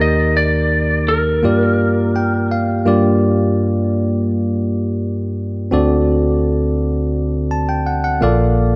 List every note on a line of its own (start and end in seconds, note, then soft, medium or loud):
0.00 1.40 D#2 medium
0.00 1.40 D#3 medium
0.00 1.40 A#3 medium
0.00 1.40 D#4 medium
0.00 1.40 G4 medium
0.00 1.41 A#4 medium
0.00 0.34 D#5 medium
0.37 1.10 D5 medium
1.09 2.47 A#4 medium
1.43 2.83 G2 medium
1.43 2.83 A#3 medium
1.43 2.84 F4 medium
1.43 2.84 G4 medium
1.43 2.85 D5 medium
2.16 2.49 G5 medium
2.51 2.84 F5 medium
2.85 5.68 G2 medium
2.85 5.68 A#3 medium
2.85 5.68 F4 medium
2.85 5.69 G4 medium
2.85 5.69 D5 medium
5.71 8.19 D2 medium
5.71 8.19 D3 medium
5.71 8.18 C4 medium
5.71 8.18 F#4 medium
5.71 8.19 A4 medium
5.71 8.19 D5 medium
7.51 7.68 A5 medium
7.69 7.85 G5 medium
7.87 8.03 F#5 medium
8.04 8.21 F#5 medium
8.21 8.76 A#1 medium
8.21 8.76 A#2 medium
8.21 8.76 A#3 medium
8.21 8.76 F4 medium
8.21 8.76 A4 medium
8.21 8.76 D5 medium
8.21 8.56 F5 medium